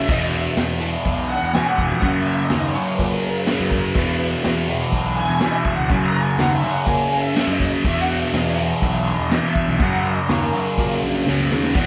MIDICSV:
0, 0, Header, 1, 5, 480
1, 0, Start_track
1, 0, Tempo, 486224
1, 85, Time_signature, 4, 2, 24, 8
1, 11713, End_track
2, 0, Start_track
2, 0, Title_t, "String section"
2, 0, Program_c, 0, 48
2, 106, Note_on_c, 0, 75, 102
2, 335, Note_off_c, 0, 75, 0
2, 342, Note_on_c, 0, 76, 77
2, 556, Note_off_c, 0, 76, 0
2, 1270, Note_on_c, 0, 78, 100
2, 1497, Note_off_c, 0, 78, 0
2, 1514, Note_on_c, 0, 80, 110
2, 1648, Note_on_c, 0, 78, 105
2, 1676, Note_off_c, 0, 80, 0
2, 1818, Note_on_c, 0, 80, 93
2, 1823, Note_off_c, 0, 78, 0
2, 1959, Note_on_c, 0, 78, 95
2, 1988, Note_off_c, 0, 80, 0
2, 2188, Note_on_c, 0, 76, 94
2, 2200, Note_off_c, 0, 78, 0
2, 2425, Note_on_c, 0, 75, 94
2, 2433, Note_off_c, 0, 76, 0
2, 2660, Note_on_c, 0, 73, 82
2, 2690, Note_off_c, 0, 75, 0
2, 2913, Note_on_c, 0, 71, 85
2, 2927, Note_off_c, 0, 73, 0
2, 3136, Note_on_c, 0, 70, 92
2, 3173, Note_off_c, 0, 71, 0
2, 3370, Note_on_c, 0, 71, 90
2, 3404, Note_off_c, 0, 70, 0
2, 3640, Note_on_c, 0, 70, 83
2, 3641, Note_off_c, 0, 71, 0
2, 3874, Note_on_c, 0, 71, 93
2, 3895, Note_off_c, 0, 70, 0
2, 4571, Note_off_c, 0, 71, 0
2, 5089, Note_on_c, 0, 80, 114
2, 5432, Note_off_c, 0, 80, 0
2, 5449, Note_on_c, 0, 75, 74
2, 5485, Note_on_c, 0, 76, 93
2, 5499, Note_off_c, 0, 75, 0
2, 5645, Note_on_c, 0, 78, 87
2, 5656, Note_off_c, 0, 76, 0
2, 5817, Note_off_c, 0, 78, 0
2, 5817, Note_on_c, 0, 80, 100
2, 5982, Note_off_c, 0, 80, 0
2, 5989, Note_on_c, 0, 82, 102
2, 6125, Note_on_c, 0, 80, 92
2, 6148, Note_off_c, 0, 82, 0
2, 6296, Note_off_c, 0, 80, 0
2, 6311, Note_on_c, 0, 78, 97
2, 6462, Note_on_c, 0, 76, 100
2, 6469, Note_off_c, 0, 78, 0
2, 6613, Note_off_c, 0, 76, 0
2, 6635, Note_on_c, 0, 78, 93
2, 6775, Note_on_c, 0, 80, 88
2, 6791, Note_off_c, 0, 78, 0
2, 7102, Note_off_c, 0, 80, 0
2, 7109, Note_on_c, 0, 76, 97
2, 7429, Note_off_c, 0, 76, 0
2, 7433, Note_on_c, 0, 75, 96
2, 7751, Note_off_c, 0, 75, 0
2, 7768, Note_on_c, 0, 76, 110
2, 7908, Note_off_c, 0, 76, 0
2, 7909, Note_on_c, 0, 78, 95
2, 8066, Note_on_c, 0, 76, 90
2, 8069, Note_off_c, 0, 78, 0
2, 8228, Note_off_c, 0, 76, 0
2, 8228, Note_on_c, 0, 75, 97
2, 8389, Note_off_c, 0, 75, 0
2, 8389, Note_on_c, 0, 73, 87
2, 8531, Note_on_c, 0, 75, 87
2, 8550, Note_off_c, 0, 73, 0
2, 8689, Note_off_c, 0, 75, 0
2, 8712, Note_on_c, 0, 76, 90
2, 9027, Note_on_c, 0, 75, 95
2, 9032, Note_off_c, 0, 76, 0
2, 9342, Note_on_c, 0, 76, 96
2, 9350, Note_off_c, 0, 75, 0
2, 9666, Note_on_c, 0, 78, 96
2, 9668, Note_off_c, 0, 76, 0
2, 9968, Note_off_c, 0, 78, 0
2, 9990, Note_on_c, 0, 75, 82
2, 10153, Note_off_c, 0, 75, 0
2, 10155, Note_on_c, 0, 73, 78
2, 10316, Note_off_c, 0, 73, 0
2, 10322, Note_on_c, 0, 70, 77
2, 10767, Note_off_c, 0, 70, 0
2, 11599, Note_on_c, 0, 78, 87
2, 11713, Note_off_c, 0, 78, 0
2, 11713, End_track
3, 0, Start_track
3, 0, Title_t, "Distorted electric guitar"
3, 0, Program_c, 1, 30
3, 71, Note_on_c, 1, 40, 96
3, 93, Note_on_c, 1, 47, 99
3, 112, Note_on_c, 1, 52, 102
3, 781, Note_off_c, 1, 40, 0
3, 781, Note_off_c, 1, 52, 0
3, 792, Note_off_c, 1, 47, 0
3, 793, Note_on_c, 1, 52, 88
3, 811, Note_on_c, 1, 47, 76
3, 827, Note_on_c, 1, 40, 70
3, 1501, Note_off_c, 1, 52, 0
3, 1502, Note_off_c, 1, 40, 0
3, 1510, Note_off_c, 1, 47, 0
3, 1514, Note_on_c, 1, 40, 76
3, 1535, Note_on_c, 1, 47, 75
3, 1552, Note_on_c, 1, 52, 84
3, 1981, Note_off_c, 1, 40, 0
3, 1991, Note_off_c, 1, 47, 0
3, 1994, Note_on_c, 1, 42, 99
3, 2000, Note_off_c, 1, 52, 0
3, 2012, Note_on_c, 1, 49, 94
3, 2028, Note_on_c, 1, 54, 110
3, 2697, Note_off_c, 1, 54, 0
3, 2699, Note_off_c, 1, 42, 0
3, 2708, Note_off_c, 1, 49, 0
3, 2709, Note_on_c, 1, 54, 88
3, 2728, Note_on_c, 1, 49, 77
3, 2745, Note_on_c, 1, 42, 79
3, 3406, Note_off_c, 1, 42, 0
3, 3415, Note_off_c, 1, 54, 0
3, 3418, Note_on_c, 1, 42, 72
3, 3425, Note_off_c, 1, 49, 0
3, 3437, Note_on_c, 1, 49, 76
3, 3456, Note_on_c, 1, 54, 81
3, 3890, Note_off_c, 1, 42, 0
3, 3899, Note_off_c, 1, 49, 0
3, 3904, Note_on_c, 1, 40, 82
3, 3909, Note_off_c, 1, 54, 0
3, 3918, Note_on_c, 1, 47, 95
3, 3938, Note_on_c, 1, 52, 101
3, 4605, Note_off_c, 1, 52, 0
3, 4612, Note_off_c, 1, 40, 0
3, 4617, Note_on_c, 1, 52, 91
3, 4619, Note_off_c, 1, 47, 0
3, 4640, Note_on_c, 1, 47, 82
3, 4654, Note_on_c, 1, 40, 71
3, 5326, Note_off_c, 1, 40, 0
3, 5328, Note_off_c, 1, 52, 0
3, 5338, Note_on_c, 1, 40, 77
3, 5339, Note_off_c, 1, 47, 0
3, 5356, Note_on_c, 1, 47, 80
3, 5371, Note_on_c, 1, 52, 89
3, 5808, Note_off_c, 1, 40, 0
3, 5817, Note_off_c, 1, 47, 0
3, 5821, Note_on_c, 1, 42, 88
3, 5825, Note_off_c, 1, 52, 0
3, 5840, Note_on_c, 1, 49, 104
3, 5856, Note_on_c, 1, 54, 106
3, 6528, Note_off_c, 1, 54, 0
3, 6530, Note_off_c, 1, 42, 0
3, 6539, Note_off_c, 1, 49, 0
3, 6540, Note_on_c, 1, 54, 89
3, 6563, Note_on_c, 1, 49, 74
3, 6579, Note_on_c, 1, 42, 78
3, 7242, Note_off_c, 1, 42, 0
3, 7249, Note_off_c, 1, 54, 0
3, 7254, Note_on_c, 1, 42, 72
3, 7261, Note_off_c, 1, 49, 0
3, 7274, Note_on_c, 1, 49, 71
3, 7293, Note_on_c, 1, 54, 84
3, 7727, Note_off_c, 1, 42, 0
3, 7734, Note_on_c, 1, 40, 86
3, 7737, Note_off_c, 1, 49, 0
3, 7746, Note_off_c, 1, 54, 0
3, 7757, Note_on_c, 1, 47, 98
3, 7771, Note_on_c, 1, 52, 105
3, 8445, Note_off_c, 1, 52, 0
3, 8448, Note_off_c, 1, 40, 0
3, 8457, Note_on_c, 1, 52, 94
3, 8460, Note_off_c, 1, 47, 0
3, 8479, Note_on_c, 1, 47, 78
3, 8489, Note_on_c, 1, 40, 80
3, 9170, Note_off_c, 1, 40, 0
3, 9171, Note_off_c, 1, 52, 0
3, 9182, Note_off_c, 1, 47, 0
3, 9182, Note_on_c, 1, 40, 78
3, 9202, Note_on_c, 1, 47, 75
3, 9218, Note_on_c, 1, 52, 77
3, 9654, Note_off_c, 1, 40, 0
3, 9664, Note_off_c, 1, 47, 0
3, 9669, Note_on_c, 1, 42, 89
3, 9672, Note_off_c, 1, 52, 0
3, 9691, Note_on_c, 1, 49, 85
3, 9702, Note_on_c, 1, 54, 98
3, 10380, Note_off_c, 1, 42, 0
3, 10386, Note_off_c, 1, 54, 0
3, 10391, Note_off_c, 1, 49, 0
3, 10398, Note_on_c, 1, 54, 82
3, 10418, Note_on_c, 1, 49, 85
3, 10431, Note_on_c, 1, 42, 75
3, 11099, Note_off_c, 1, 42, 0
3, 11106, Note_off_c, 1, 54, 0
3, 11111, Note_on_c, 1, 42, 86
3, 11116, Note_off_c, 1, 49, 0
3, 11133, Note_on_c, 1, 49, 84
3, 11151, Note_on_c, 1, 54, 79
3, 11583, Note_off_c, 1, 42, 0
3, 11594, Note_off_c, 1, 49, 0
3, 11598, Note_on_c, 1, 40, 93
3, 11603, Note_off_c, 1, 54, 0
3, 11615, Note_on_c, 1, 47, 96
3, 11636, Note_on_c, 1, 52, 98
3, 11713, Note_off_c, 1, 40, 0
3, 11713, Note_off_c, 1, 47, 0
3, 11713, Note_off_c, 1, 52, 0
3, 11713, End_track
4, 0, Start_track
4, 0, Title_t, "Picked electric bass"
4, 0, Program_c, 2, 34
4, 87, Note_on_c, 2, 40, 108
4, 459, Note_off_c, 2, 40, 0
4, 561, Note_on_c, 2, 40, 92
4, 934, Note_off_c, 2, 40, 0
4, 1042, Note_on_c, 2, 35, 90
4, 1321, Note_off_c, 2, 35, 0
4, 1408, Note_on_c, 2, 40, 89
4, 1591, Note_off_c, 2, 40, 0
4, 1886, Note_on_c, 2, 41, 92
4, 1976, Note_off_c, 2, 41, 0
4, 2000, Note_on_c, 2, 42, 120
4, 2372, Note_off_c, 2, 42, 0
4, 2479, Note_on_c, 2, 39, 92
4, 2664, Note_off_c, 2, 39, 0
4, 2953, Note_on_c, 2, 46, 112
4, 3140, Note_off_c, 2, 46, 0
4, 3556, Note_on_c, 2, 42, 83
4, 3741, Note_off_c, 2, 42, 0
4, 3908, Note_on_c, 2, 40, 100
4, 4282, Note_off_c, 2, 40, 0
4, 4401, Note_on_c, 2, 40, 98
4, 4770, Note_off_c, 2, 40, 0
4, 4865, Note_on_c, 2, 35, 95
4, 5146, Note_off_c, 2, 35, 0
4, 5223, Note_on_c, 2, 40, 91
4, 5412, Note_off_c, 2, 40, 0
4, 5695, Note_on_c, 2, 37, 96
4, 5793, Note_off_c, 2, 37, 0
4, 5826, Note_on_c, 2, 42, 115
4, 6200, Note_off_c, 2, 42, 0
4, 6297, Note_on_c, 2, 39, 97
4, 6488, Note_off_c, 2, 39, 0
4, 6782, Note_on_c, 2, 46, 103
4, 6971, Note_off_c, 2, 46, 0
4, 7379, Note_on_c, 2, 42, 86
4, 7569, Note_off_c, 2, 42, 0
4, 7747, Note_on_c, 2, 40, 102
4, 8122, Note_off_c, 2, 40, 0
4, 8227, Note_on_c, 2, 40, 96
4, 8603, Note_off_c, 2, 40, 0
4, 8708, Note_on_c, 2, 35, 102
4, 8990, Note_off_c, 2, 35, 0
4, 9074, Note_on_c, 2, 40, 90
4, 9261, Note_off_c, 2, 40, 0
4, 9558, Note_on_c, 2, 35, 96
4, 9650, Note_off_c, 2, 35, 0
4, 9672, Note_on_c, 2, 42, 120
4, 10048, Note_off_c, 2, 42, 0
4, 10160, Note_on_c, 2, 39, 93
4, 10346, Note_off_c, 2, 39, 0
4, 10644, Note_on_c, 2, 46, 116
4, 10829, Note_off_c, 2, 46, 0
4, 10885, Note_on_c, 2, 34, 92
4, 11099, Note_off_c, 2, 34, 0
4, 11124, Note_on_c, 2, 37, 93
4, 11339, Note_off_c, 2, 37, 0
4, 11373, Note_on_c, 2, 39, 84
4, 11585, Note_off_c, 2, 39, 0
4, 11600, Note_on_c, 2, 40, 102
4, 11713, Note_off_c, 2, 40, 0
4, 11713, End_track
5, 0, Start_track
5, 0, Title_t, "Drums"
5, 84, Note_on_c, 9, 49, 89
5, 86, Note_on_c, 9, 36, 122
5, 183, Note_off_c, 9, 49, 0
5, 185, Note_off_c, 9, 36, 0
5, 327, Note_on_c, 9, 49, 55
5, 426, Note_off_c, 9, 49, 0
5, 561, Note_on_c, 9, 49, 76
5, 562, Note_on_c, 9, 38, 122
5, 660, Note_off_c, 9, 49, 0
5, 661, Note_off_c, 9, 38, 0
5, 808, Note_on_c, 9, 49, 58
5, 907, Note_off_c, 9, 49, 0
5, 1036, Note_on_c, 9, 49, 80
5, 1043, Note_on_c, 9, 36, 89
5, 1134, Note_off_c, 9, 49, 0
5, 1142, Note_off_c, 9, 36, 0
5, 1281, Note_on_c, 9, 49, 57
5, 1380, Note_off_c, 9, 49, 0
5, 1526, Note_on_c, 9, 49, 83
5, 1527, Note_on_c, 9, 38, 119
5, 1625, Note_off_c, 9, 49, 0
5, 1626, Note_off_c, 9, 38, 0
5, 1759, Note_on_c, 9, 49, 62
5, 1760, Note_on_c, 9, 36, 87
5, 1858, Note_off_c, 9, 36, 0
5, 1858, Note_off_c, 9, 49, 0
5, 1991, Note_on_c, 9, 49, 77
5, 1996, Note_on_c, 9, 36, 115
5, 2089, Note_off_c, 9, 49, 0
5, 2095, Note_off_c, 9, 36, 0
5, 2231, Note_on_c, 9, 49, 56
5, 2330, Note_off_c, 9, 49, 0
5, 2466, Note_on_c, 9, 49, 82
5, 2467, Note_on_c, 9, 38, 109
5, 2564, Note_off_c, 9, 49, 0
5, 2565, Note_off_c, 9, 38, 0
5, 2715, Note_on_c, 9, 49, 60
5, 2814, Note_off_c, 9, 49, 0
5, 2952, Note_on_c, 9, 36, 88
5, 2958, Note_on_c, 9, 49, 76
5, 3051, Note_off_c, 9, 36, 0
5, 3057, Note_off_c, 9, 49, 0
5, 3190, Note_on_c, 9, 49, 56
5, 3289, Note_off_c, 9, 49, 0
5, 3425, Note_on_c, 9, 49, 93
5, 3426, Note_on_c, 9, 38, 125
5, 3524, Note_off_c, 9, 38, 0
5, 3524, Note_off_c, 9, 49, 0
5, 3667, Note_on_c, 9, 36, 100
5, 3667, Note_on_c, 9, 49, 65
5, 3765, Note_off_c, 9, 36, 0
5, 3765, Note_off_c, 9, 49, 0
5, 3899, Note_on_c, 9, 49, 88
5, 3904, Note_on_c, 9, 36, 118
5, 3997, Note_off_c, 9, 49, 0
5, 4003, Note_off_c, 9, 36, 0
5, 4142, Note_on_c, 9, 49, 55
5, 4241, Note_off_c, 9, 49, 0
5, 4385, Note_on_c, 9, 49, 86
5, 4386, Note_on_c, 9, 38, 113
5, 4484, Note_off_c, 9, 49, 0
5, 4485, Note_off_c, 9, 38, 0
5, 4623, Note_on_c, 9, 49, 62
5, 4722, Note_off_c, 9, 49, 0
5, 4862, Note_on_c, 9, 36, 91
5, 4862, Note_on_c, 9, 49, 86
5, 4960, Note_off_c, 9, 36, 0
5, 4960, Note_off_c, 9, 49, 0
5, 5101, Note_on_c, 9, 49, 57
5, 5200, Note_off_c, 9, 49, 0
5, 5335, Note_on_c, 9, 49, 81
5, 5336, Note_on_c, 9, 38, 113
5, 5434, Note_off_c, 9, 49, 0
5, 5435, Note_off_c, 9, 38, 0
5, 5574, Note_on_c, 9, 49, 56
5, 5581, Note_on_c, 9, 36, 94
5, 5673, Note_off_c, 9, 49, 0
5, 5679, Note_off_c, 9, 36, 0
5, 5818, Note_on_c, 9, 49, 84
5, 5822, Note_on_c, 9, 36, 122
5, 5917, Note_off_c, 9, 49, 0
5, 5920, Note_off_c, 9, 36, 0
5, 6071, Note_on_c, 9, 49, 50
5, 6170, Note_off_c, 9, 49, 0
5, 6305, Note_on_c, 9, 49, 77
5, 6306, Note_on_c, 9, 38, 115
5, 6404, Note_off_c, 9, 49, 0
5, 6405, Note_off_c, 9, 38, 0
5, 6541, Note_on_c, 9, 49, 62
5, 6639, Note_off_c, 9, 49, 0
5, 6774, Note_on_c, 9, 49, 78
5, 6779, Note_on_c, 9, 36, 98
5, 6873, Note_off_c, 9, 49, 0
5, 6878, Note_off_c, 9, 36, 0
5, 7029, Note_on_c, 9, 49, 68
5, 7128, Note_off_c, 9, 49, 0
5, 7269, Note_on_c, 9, 49, 80
5, 7270, Note_on_c, 9, 38, 107
5, 7368, Note_off_c, 9, 49, 0
5, 7369, Note_off_c, 9, 38, 0
5, 7504, Note_on_c, 9, 36, 92
5, 7507, Note_on_c, 9, 49, 60
5, 7602, Note_off_c, 9, 36, 0
5, 7606, Note_off_c, 9, 49, 0
5, 7745, Note_on_c, 9, 36, 116
5, 7748, Note_on_c, 9, 49, 82
5, 7843, Note_off_c, 9, 36, 0
5, 7846, Note_off_c, 9, 49, 0
5, 7995, Note_on_c, 9, 49, 59
5, 8094, Note_off_c, 9, 49, 0
5, 8231, Note_on_c, 9, 49, 90
5, 8232, Note_on_c, 9, 38, 103
5, 8330, Note_off_c, 9, 49, 0
5, 8331, Note_off_c, 9, 38, 0
5, 8471, Note_on_c, 9, 49, 62
5, 8570, Note_off_c, 9, 49, 0
5, 8709, Note_on_c, 9, 36, 93
5, 8713, Note_on_c, 9, 49, 89
5, 8808, Note_off_c, 9, 36, 0
5, 8811, Note_off_c, 9, 49, 0
5, 8962, Note_on_c, 9, 49, 67
5, 9060, Note_off_c, 9, 49, 0
5, 9195, Note_on_c, 9, 49, 90
5, 9196, Note_on_c, 9, 38, 121
5, 9293, Note_off_c, 9, 49, 0
5, 9294, Note_off_c, 9, 38, 0
5, 9433, Note_on_c, 9, 36, 97
5, 9434, Note_on_c, 9, 49, 67
5, 9532, Note_off_c, 9, 36, 0
5, 9533, Note_off_c, 9, 49, 0
5, 9674, Note_on_c, 9, 36, 126
5, 9676, Note_on_c, 9, 49, 82
5, 9773, Note_off_c, 9, 36, 0
5, 9775, Note_off_c, 9, 49, 0
5, 9924, Note_on_c, 9, 49, 50
5, 10022, Note_off_c, 9, 49, 0
5, 10159, Note_on_c, 9, 49, 84
5, 10160, Note_on_c, 9, 38, 107
5, 10258, Note_off_c, 9, 49, 0
5, 10259, Note_off_c, 9, 38, 0
5, 10409, Note_on_c, 9, 49, 64
5, 10507, Note_off_c, 9, 49, 0
5, 10640, Note_on_c, 9, 36, 99
5, 10646, Note_on_c, 9, 49, 73
5, 10739, Note_off_c, 9, 36, 0
5, 10745, Note_off_c, 9, 49, 0
5, 10888, Note_on_c, 9, 49, 61
5, 10986, Note_off_c, 9, 49, 0
5, 11128, Note_on_c, 9, 38, 75
5, 11227, Note_off_c, 9, 38, 0
5, 11253, Note_on_c, 9, 38, 62
5, 11352, Note_off_c, 9, 38, 0
5, 11363, Note_on_c, 9, 38, 96
5, 11461, Note_off_c, 9, 38, 0
5, 11485, Note_on_c, 9, 38, 86
5, 11584, Note_off_c, 9, 38, 0
5, 11599, Note_on_c, 9, 49, 88
5, 11602, Note_on_c, 9, 36, 126
5, 11697, Note_off_c, 9, 49, 0
5, 11701, Note_off_c, 9, 36, 0
5, 11713, End_track
0, 0, End_of_file